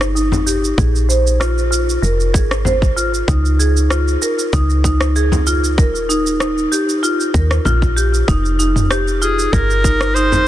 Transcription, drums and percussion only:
0.01 cross-stick, cabasa
0.17 cabasa
0.32 frame drum, cabasa
0.47 cabasa
0.64 cabasa
0.78 kick, cabasa
0.96 cabasa
1.10 cabasa
1.27 cabasa
1.41 cross-stick, cabasa
1.58 cabasa
1.73 cabasa
1.89 cabasa
2.04 cabasa
2.20 cabasa
2.34 kick, cabasa
2.51 cross-stick, cabasa
2.65 frame drum, cabasa
2.82 kick, cabasa
2.98 cabasa
3.14 cabasa
3.28 kick, cabasa
3.45 cabasa
3.60 cabasa
3.77 cabasa
3.90 cross-stick, cabasa
4.08 cabasa
4.22 cabasa
4.39 cabasa
4.53 kick, cabasa
4.70 cabasa
4.84 kick, cabasa
5.01 cross-stick, cabasa
5.16 cabasa
5.32 frame drum, cabasa
5.47 cabasa
5.64 cabasa
5.78 kick, cabasa
5.95 cabasa
6.10 cabasa
6.27 cabasa
6.40 cross-stick, cabasa
6.58 cabasa
6.73 cabasa
6.89 cabasa
7.04 cabasa
7.20 cabasa
7.34 kick, cabasa
7.51 cross-stick, cabasa
7.65 frame drum, cabasa
7.82 kick, cabasa
7.98 cabasa
8.14 cabasa
8.28 kick, cabasa
8.45 cabasa
8.60 cabasa
8.76 mid tom, cabasa
8.91 cross-stick, cabasa
9.08 cabasa
9.22 cabasa
9.39 cabasa
9.53 kick, cabasa
9.70 cabasa
9.84 kick, cabasa
10.01 cross-stick, cabasa
10.16 cabasa
10.32 frame drum, cabasa

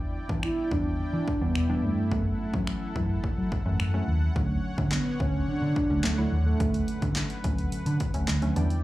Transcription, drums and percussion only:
0.29 kick
0.43 finger snap
0.71 kick
1.28 kick
1.55 finger snap
2.12 kick
2.54 kick
2.67 finger snap
2.96 kick
3.24 kick
3.52 kick
3.80 finger snap
4.36 kick
4.78 kick
4.91 snare, clap
5.20 kick
5.76 kick
6.04 snare, clap
6.60 kick, closed hi-hat
6.74 closed hi-hat
6.88 closed hi-hat
7.02 kick, closed hi-hat
7.15 snare, clap, closed hi-hat
7.30 closed hi-hat
7.44 kick, closed hi-hat
7.58 closed hi-hat
7.72 closed hi-hat
7.86 closed hi-hat
8.00 kick, closed hi-hat
8.14 closed hi-hat
8.28 snare, clap, closed hi-hat
8.42 closed hi-hat
8.56 closed hi-hat
8.70 closed hi-hat

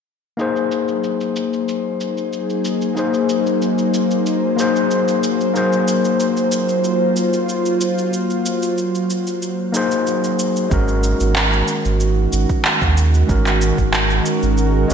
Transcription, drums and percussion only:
0.39 cabasa
0.56 cabasa
0.72 cabasa
0.88 cabasa
1.04 cabasa
1.21 cabasa
1.36 cabasa
1.53 cabasa
1.69 cabasa
2.01 cabasa
2.17 cabasa
2.33 cabasa
2.50 cabasa
2.65 cabasa
2.82 cabasa
2.97 cabasa
3.14 cabasa
3.29 cabasa
3.46 cabasa
3.62 cabasa
3.78 cabasa
3.94 cabasa
4.11 cabasa
4.26 cabasa
4.59 cabasa
4.76 cabasa
4.91 cabasa
5.08 cabasa
5.24 cabasa
5.41 cabasa
5.56 cabasa
5.73 cabasa
5.88 cabasa
6.05 cabasa
6.20 cabasa
6.37 cabasa
6.52 cabasa
6.69 cabasa
6.84 cabasa
7.16 cabasa
7.33 cabasa
7.49 cabasa
7.66 cabasa
7.81 cabasa
7.98 cabasa
8.13 cabasa
8.30 cabasa
8.46 cabasa
8.63 cabasa
8.78 cabasa
8.95 cabasa
9.10 cabasa
9.27 cabasa
9.42 cabasa
9.74 cabasa
9.91 cabasa
10.07 cabasa
10.24 cabasa
10.39 cabasa
10.56 cabasa
10.71 kick, cabasa
10.88 cabasa
11.04 cabasa
11.20 cabasa
11.36 clap, cabasa
11.53 cabasa
11.68 cabasa
11.85 cabasa
12.00 cabasa
12.33 cabasa
12.49 kick, cabasa
12.65 clap, cabasa
12.82 kick, cabasa
12.97 cabasa
13.14 cabasa
13.29 kick, cabasa
13.46 clap, cabasa
13.62 cabasa
13.78 kick, cabasa
13.94 clap, cabasa
14.10 cabasa
14.26 cabasa
14.43 cabasa
14.58 cabasa
14.90 cabasa

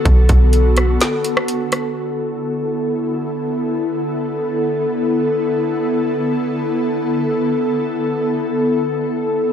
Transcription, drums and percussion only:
0.05 kick, closed hi-hat
0.29 kick, closed hi-hat
0.53 closed hi-hat
0.77 cross-stick, closed hi-hat
1.01 snare, closed hi-hat
1.24 closed hi-hat
1.37 cross-stick
1.48 closed hi-hat
1.72 cross-stick, closed hi-hat

